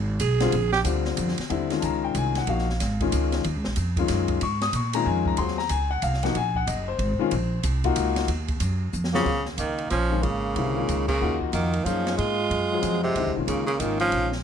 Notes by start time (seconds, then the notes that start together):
Already playing: G#1
0.20 B1 G#4, hi-hat pedal, ride
0.40 D3 G3 C4 F4, snare, ride
0.52 A#1, ride
0.72 G4, snare
0.84 D2 D3 G3 C4 F4, hi-hat pedal, ride
1.05 snare
1.17 F2, hi-hat pedal, ride
1.28 snare
1.38 muted upright bass stroke, snare, ride
1.50 D#2 D3 G3 C4 E4, ride
1.70 D#3 G#3 C#4 F4, snare, ride
1.80 C#2 A5, hi-hat pedal, ride
1.85 A#5
2.04 G5
2.15 C2 G#5, hi-hat pedal, ride
2.35 F#5, snare, ride
2.47 A#1 F3 A#3 D#4 F#4 F5, ride
2.59 snare
2.70 snare
2.80 G#1, snare, hi-hat pedal, ride
3.00 D#3 G#3 C#4 F4, kick, ride
3.12 C#2, hi-hat pedal, ride
3.32 snare, ride
3.44 D#2, ride
3.56 C#2
3.64 A#1, snare
3.76 F2, hi-hat pedal, ride
3.96 D#3 G#3 C#4 F4, kick, ride
4.08 F#2, snare, hi-hat pedal, ride
4.28 kick, ride
4.41 G#2 C#6, ride
4.61 D#6, snare, ride
4.73 A#2 C#6, hi-hat pedal, ride
4.93 D#3 G#3 C#4 F4 A#5, ride
5.06 F2 G#5
5.25 A#5, kick
5.37 D#2 F#3 C4 F4 G#4 C6, ride
5.48 snare
5.58 A#5, snare
5.69 C#2 G#5, hi-hat pedal, ride
5.91 F#5
6.02 C2 F5, hi-hat pedal, ride
6.14 snare
6.23 F3 A#3 D#4 F#4 F#5, snare, ride
6.35 A#1 G#5, ride
6.55 F#5, kick
6.67 F#1 D#5, hi-hat pedal, ride
6.88 C5
6.99 G#1, ride
7.19 D#3 G#3 C#4 F4, muted upright bass stroke
7.31 A#1, ride
7.63 C2, hi-hat pedal, ride
7.84 A#3 D#4 F4 F#4, kick, ride
7.96 C#2, hi-hat pedal, ride
8.16 snare, ride
8.28 D#2, ride
8.48 kick, ride
8.60 F#2, hi-hat pedal, ride
8.93 F2, hi-hat pedal
9.04 snare
9.13 C#3 F#3 A#3 C4 F4 G#4, snare
9.26 D#2, kick, crash
9.45 snare
9.57 C#2 D#3 A#3, hi-hat pedal, ride
9.78 ride
9.90 A#1 F3 C#4, hi-hat pedal, ride
10.10 D#3 G#3 C#4 F4
10.22 G#1 C#3 A#3, ride
10.55 C2 D3 G3 C4 E4, ride
10.76 D#3 G#3 C#4 F4
10.89 C#2, hi-hat pedal, ride
11.07 C#3 A#3, kick, crash
11.20 D#2 A#3 D#4 F4 F#4
11.41 kick
11.53 F2 D#3 A#3, hi-hat pedal, ride
11.73 ride
11.84 F#2 F3 A#3 C#4 D#4 F4 G#4, hi-hat pedal, ride
12.07 snare, ride
12.18 G#2 G#3 F4, ride
12.50 F#2, ride
12.72 F#3 C4 F4 G#4
12.83 F2, hi-hat pedal, ride
13.03 C3 G#3
13.15 D#2 D3 G3 C4 E4, ride
13.26 C#2
13.36 A#1 D#3 G#3 C#4 F4
13.46 C#2 C#3 A#3, hi-hat pedal, ride
13.66 C#3 A#3, ride
13.79 G#1 D#3 G#3 A#3 C#4 F4, hi-hat pedal, ride
14.00 F3 C#4, ride
14.12 A#1, ride
14.32 snare